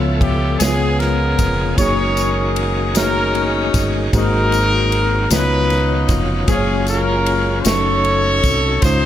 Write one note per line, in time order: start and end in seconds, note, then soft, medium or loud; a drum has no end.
0.00 0.56 C#2 medium
0.00 0.57 C#3 medium
0.00 0.23 F3 medium
0.00 0.60 F3 medium
0.00 0.59 A3 medium
0.00 0.23 B3 medium
0.00 1.76 B3 medium
0.00 1.75 C#4 medium
0.00 0.57 E4 medium
0.00 0.56 F4 medium
0.00 0.23 A4 medium
0.00 0.60 A4 medium
0.00 0.24 C#5 medium
0.00 0.23 E5 medium
0.19 0.57 G4 medium
0.19 kick medium
0.19 ride medium
0.58 1.35 C#2 loud
0.58 1.74 C#3 medium
0.58 1.77 F3 medium
0.58 1.77 G#3 medium
0.58 1.73 B3 medium
0.58 1.40 B3 medium
0.58 1.40 C#4 medium
0.58 0.67 D#4 medium
0.58 0.99 F4 medium
0.58 0.98 G#4 medium
0.58 1.41 G#4 medium
0.58 1.77 G#4 medium
0.58 1.41 C#5 medium
0.58 ride medium
0.58 tambourine medium
0.62 snare loud
0.68 1.44 F4 medium
0.98 1.74 F4 medium
0.98 1.77 A#4 loud
0.98 snare soft
0.98 ride soft
1.39 1.75 F1 medium
1.39 kick medium
1.39 ride medium
1.39 tambourine medium
1.78 3.70 F#1 medium
1.78 4.11 D#3 medium
1.78 5.28 G#3 medium
1.78 2.58 A#3 medium
1.78 4.11 A#3 medium
1.78 4.11 C#4 medium
1.78 2.58 D#4 medium
1.78 2.58 F#4 medium
1.78 5.27 F#4 medium
1.78 2.92 G#4 medium
1.78 2.59 G#4 medium
1.78 2.92 A#4 medium
1.78 2.56 C#5 loud
1.78 2.59 C#5 medium
1.78 kick medium
1.78 ride medium
1.78 tambourine medium
2.17 ride soft
2.17 tambourine medium
2.56 ride medium
2.95 3.02 A3 medium
2.95 4.09 C#4 medium
2.95 3.75 D#4 medium
2.95 4.09 D#4 medium
2.95 3.76 F#4 medium
2.95 3.76 G#4 medium
2.95 3.70 A#4 loud
2.95 3.76 C#5 medium
2.95 snare loud
2.95 ride medium
2.95 tambourine medium
3.02 3.79 A#3 medium
3.35 ride soft
3.74 4.10 G1 medium
3.74 kick medium
3.74 ride medium
3.74 tambourine medium
4.13 5.26 G#1 loud
4.13 5.27 G#2 medium
4.13 6.46 D#3 medium
4.13 7.62 F#3 medium
4.13 4.93 A#3 medium
4.13 5.30 C4 medium
4.13 4.93 D#4 medium
4.13 5.27 D#4 medium
4.13 4.93 F#4 medium
4.13 5.27 F#4 medium
4.13 4.94 G#4 medium
4.13 5.27 A#4 loud
4.13 4.94 C5 medium
4.13 kick loud
4.13 ride medium
4.13 tambourine medium
4.52 ride soft
4.52 tambourine medium
4.92 ride medium
5.30 6.05 C#2 medium
5.30 6.44 C#3 medium
5.30 6.10 B3 medium
5.30 6.47 B3 medium
5.30 9.06 C#4 soft
5.30 6.10 D#4 medium
5.30 6.45 D#4 medium
5.30 6.10 F4 medium
5.30 6.46 F4 medium
5.30 6.45 F4 medium
5.30 6.15 B4 loud
5.30 6.11 C#5 medium
5.30 6.11 A#5 medium
5.30 snare loud
5.30 ride medium
5.30 tambourine medium
5.70 snare soft
5.70 ride soft
6.09 6.45 F1 medium
6.09 kick medium
6.09 ride medium
6.09 tambourine medium
6.48 7.61 F#1 medium
6.48 7.28 F#3 medium
6.48 7.64 G#3 medium
6.48 7.28 A#3 medium
6.48 6.89 C#4 medium
6.48 7.64 F4 medium
6.48 7.28 F4 medium
6.48 6.89 F4 medium
6.48 6.84 G#4 medium
6.48 7.28 G#4 medium
6.48 6.55 C5 medium
6.48 kick loud
6.48 ride medium
6.48 tambourine soft
6.55 7.32 C#5 medium
6.87 7.63 C#4 medium
6.87 7.63 F4 medium
6.87 7.62 A#4 loud
6.87 ride soft
6.87 tambourine medium
7.26 ride medium
7.64 8.40 F#1 loud
7.64 8.81 F#3 medium
7.64 8.45 A3 medium
7.64 8.82 A3 medium
7.64 8.45 C#4 medium
7.64 9.06 D#4 medium
7.64 8.45 D#4 medium
7.64 8.46 F#4 medium
7.64 8.79 A4 medium
7.64 7.72 C5 medium
7.64 8.82 C#5 loud
7.64 snare loud
7.64 ride medium
7.64 tambourine loud
7.73 8.49 C#5 medium
8.05 ride soft
8.43 8.80 C2 medium
8.43 kick medium
8.43 ride medium
8.43 tambourine medium
8.81 9.06 C#2 loud
8.81 9.06 C#3 medium
8.81 9.06 G#3 medium
8.81 9.06 C#4 medium
8.81 9.06 D#4 medium
8.81 9.06 F4 medium
8.81 9.06 C5 loud
8.81 9.06 C5 medium
8.81 kick loud
8.81 ride medium
8.81 tambourine soft